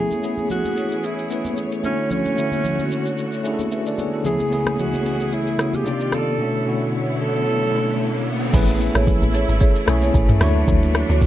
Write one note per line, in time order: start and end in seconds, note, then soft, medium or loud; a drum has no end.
0.00 1.82 E3 medium
0.00 0.18 A3 medium
0.00 5.82 A3 medium
0.00 0.18 B3 medium
0.00 0.19 C#4 medium
0.00 0.19 E4 medium
0.00 0.20 G#4 medium
0.00 0.47 G#4 loud
0.00 1.82 G#4 medium
0.00 4.21 C#5 medium
0.11 high conga medium
0.11 shaker medium
0.22 1.09 A3 medium
0.22 1.09 B3 medium
0.22 1.10 C#4 medium
0.22 1.10 E4 medium
0.22 1.11 G#4 medium
0.22 shaker medium
0.38 high conga medium
0.38 shaker soft
0.50 1.06 F#4 loud
0.50 low conga medium
0.50 shaker medium
0.65 high conga medium
0.65 shaker medium
0.77 shaker medium
0.92 shaker medium
1.04 1.58 E4 medium
1.04 shaker medium
1.18 shaker soft
1.29 1.82 A3 medium
1.29 1.84 B3 medium
1.29 1.82 C#4 medium
1.29 1.84 E4 medium
1.29 1.85 B4 medium
1.29 shaker medium
1.45 high conga medium
1.45 shaker medium
1.57 shaker medium
1.72 shaker medium
1.83 4.23 D3 medium
1.83 2.27 A3 medium
1.83 2.28 C#4 medium
1.83 2.09 C#4 loud
1.83 2.28 D4 medium
1.83 2.29 E4 medium
1.83 4.23 F#4 medium
1.83 2.29 F#4 medium
1.83 high conga medium
1.83 shaker medium
2.11 3.14 C#4 loud
2.11 low conga medium
2.11 shaker medium
2.25 high conga medium
2.25 shaker soft
2.36 3.24 D3 medium
2.36 3.23 A3 medium
2.36 3.24 C#4 medium
2.36 3.25 E4 medium
2.36 3.25 F#4 medium
2.36 shaker medium
2.52 high conga medium
2.52 shaker soft
2.64 low conga medium
2.64 shaker medium
2.79 high conga medium
2.79 shaker medium
2.91 shaker medium
3.06 shaker medium
3.18 shaker medium
3.33 shaker soft
3.44 4.09 A3 medium
3.44 4.10 C#4 medium
3.44 4.10 D4 medium
3.44 3.72 E4 medium
3.44 3.53 G#4 medium
3.44 shaker medium
3.54 3.76 A4 medium
3.59 high conga medium
3.59 shaker medium
3.72 3.86 B4 medium
3.72 3.86 E5 medium
3.72 shaker medium
3.86 3.98 A4 medium
3.86 3.98 D5 medium
3.86 shaker medium
3.98 4.13 G#4 medium
3.98 4.13 C#5 medium
3.98 high conga medium
3.98 shaker medium
4.14 4.26 E4 medium
4.14 4.39 A4 medium
4.24 5.84 C#2 medium
4.24 4.46 C#3 medium
4.24 5.84 E3 medium
4.24 4.47 A3 medium
4.24 4.47 B3 medium
4.24 5.84 C#4 medium
4.24 4.48 C#4 medium
4.24 4.48 E4 medium
4.24 5.84 G#4 medium
4.24 4.81 G#4 loud
4.24 4.48 G#4 medium
4.24 low conga medium
4.24 shaker medium
4.40 high conga medium
4.40 shaker medium
4.51 5.38 C#3 medium
4.51 5.38 A3 medium
4.51 5.38 B3 medium
4.51 5.39 C#4 medium
4.51 5.39 E4 medium
4.51 5.39 G#4 medium
4.51 shaker medium
4.66 cross-stick medium
4.66 high conga medium
4.66 shaker soft
4.79 5.35 F#4 medium
4.79 low conga medium
4.79 shaker medium
4.93 high conga medium
4.93 shaker medium
5.06 shaker medium
5.20 shaker medium
5.32 5.76 E4 medium
5.32 shaker medium
5.47 shaker soft
5.58 5.85 C#3 medium
5.58 5.86 A3 medium
5.58 5.86 B3 medium
5.58 5.86 C#4 medium
5.58 5.87 E4 medium
5.58 5.87 F#4 medium
5.58 cross-stick medium
5.58 shaker medium
5.73 6.15 G4 medium
5.73 high conga medium
5.73 shaker medium
5.85 6.29 C3 medium
5.85 6.39 D#3 medium
5.85 6.29 A#3 medium
5.85 6.39 A#3 medium
5.85 6.39 C4 medium
5.85 6.30 D4 medium
5.85 6.30 D#4 medium
5.85 6.39 F4 medium
5.85 6.31 F4 medium
5.85 6.31 G4 medium
5.85 6.39 D5 medium
5.85 shaker medium
6.00 shaker medium
6.12 6.94 A4 loud
6.12 cross-stick medium
6.12 high conga medium
6.12 shaker medium
6.38 6.61 B2 medium
6.38 8.52 D3 medium
6.38 6.61 A3 medium
6.38 8.51 A3 medium
6.38 8.51 B3 medium
6.38 6.61 C#4 medium
6.38 6.62 D4 medium
6.38 8.52 E4 medium
6.38 6.62 E4 medium
6.38 6.63 F#4 medium
6.38 8.52 C#5 medium
6.38 riser medium
6.65 7.52 B2 medium
6.65 7.52 A3 medium
6.65 7.53 C#4 medium
6.65 7.53 D4 medium
6.65 7.53 E4 medium
6.65 7.54 F#4 medium
7.21 8.23 A4 loud
7.72 8.38 B2 medium
7.72 8.38 A3 medium
7.72 8.39 C#4 medium
7.72 8.39 D4 medium
7.72 8.39 E4 medium
7.72 8.40 A4 medium
8.52 8.90 A1 loud
8.52 11.27 E3 medium
8.52 9.39 A3 medium
8.52 11.27 A3 medium
8.52 9.40 C#4 medium
8.52 10.39 E4 medium
8.52 9.40 E4 medium
8.52 9.41 G#4 medium
8.52 9.41 B4 loud
8.52 kick loud
8.52 crash loud
8.52 low conga medium
8.52 shaker medium
8.68 high conga medium
8.68 shaker medium
8.80 shaker medium
8.95 9.18 A1 loud
8.95 9.31 G#4 medium
8.95 9.31 A4 medium
8.95 9.31 C#5 medium
8.95 cross-stick loud
8.95 high conga medium
8.95 shaker soft
9.07 kick medium
9.07 low conga medium
9.07 shaker medium
9.22 9.45 A1 medium
9.22 high conga medium
9.22 shaker medium
9.34 9.59 G#4 medium
9.34 9.59 A4 medium
9.34 9.59 C#5 medium
9.34 shaker medium
9.49 9.72 G#1 medium
9.49 shaker medium
9.60 9.72 G#4 loud
9.60 9.73 A4 medium
9.60 9.73 C#5 loud
9.60 kick loud
9.60 shaker medium
9.76 shaker soft
9.86 10.11 B1 medium
9.86 10.39 A3 medium
9.86 10.41 C#4 medium
9.86 10.40 E4 medium
9.86 10.42 G#4 medium
9.86 10.42 C#5 loud
9.86 cross-stick loud
9.86 shaker medium
10.02 10.12 G#4 medium
10.02 10.12 A4 medium
10.02 10.12 C#5 medium
10.02 high conga medium
10.02 shaker medium
10.14 10.37 A1 loud
10.14 kick loud
10.14 shaker medium
10.29 mid tom loud
10.29 shaker medium
10.40 10.64 D2 loud
10.40 11.27 F#3 medium
10.40 11.27 A3 loud
10.40 11.27 D4 medium
10.40 10.53 D4 medium
10.40 11.27 D4 medium
10.40 11.27 E4 loud
10.40 10.53 F#4 medium
10.40 11.27 F#4 medium
10.40 10.53 C#5 medium
10.40 11.27 C#5 loud
10.40 cross-stick loud
10.40 open hi-hat medium
10.40 high conga medium
10.40 shaker medium
10.68 11.04 D2 loud
10.68 kick loud
10.68 low conga medium
10.68 shaker medium
10.82 high conga medium
10.82 shaker medium
10.95 cross-stick loud
10.95 shaker medium
11.09 11.27 D2 medium
11.09 11.27 D4 medium
11.09 11.27 F#4 medium
11.09 11.27 C#5 medium
11.09 high conga medium
11.09 shaker soft
11.21 kick loud
11.21 low conga medium
11.21 shaker medium